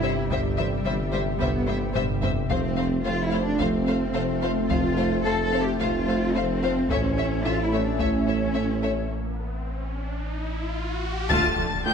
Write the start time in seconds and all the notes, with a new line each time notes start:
Already playing: G1 C3 G3 E4 G4 E5
0.03 G3 C4 C5 E5
0.30 G1 C3 G3 C5 E5, taiko
0.58 E3 G3 C5 E5
0.85 G1 E3 G3 C5 E5
1.12 G3 C5 E5
1.39 G1 C3 G3 B3 C5 E5, taiko
1.66 G3 C5 E5, taiko high
1.94 G1 G3 C5 E5, taiko low-mid
2.22 G3 C4 C5 E5, taiko low
2.50 F1 F3 A3 C4 F4 C5 F5, taiko
2.76 A3 C5 F5
3.05 F1 A3 F4 C5 F5
3.24 E4
3.31 A3 C4 C5 F5
3.43 D4
3.59 F1 F3 A3 C4 C5 F5, taiko
3.87 A3 C4 C5 F5
4.14 F1 A3 C4 C5 F5
4.42 A3 F4 C5 F5
4.69 F1 F3 A3 F4 C5 F5, taiko
4.97 A3 C5 F5
5.25 F1 A3 A4 C5 F5
5.44 A4
5.52 A3 C4 C5 F5
5.63 G4
5.80 F1 F3 A3 F4 C5 F5, taiko
6.07 A3 C4 C5 F5
6.34 F1 A3 C4 C5 F5
6.62 A3 F4 C5 F5
6.89 A1 A3 C#4 E4 C#5 E5, taiko, riser
7.17 A3 C#4 C#5 E5
7.44 A1 A3 C#4 F4 C#5 E5
7.64 E4
7.72 A3 E4 C#5 E5
7.83 D4
7.99 A1 A3 C#4 C#5 E5, taiko
8.26 A3 E4 C#5 E5
8.54 A1 A3 E4 C#5 E5
8.82 A3 A4 C#5 E5
11.29 D1 D2 D3 A3 D4 F4 D5 A5 A6, taiko, impact
11.57 D2 D3 F3 A3
11.85 D2 F3 G3 A3 D4 G5 G6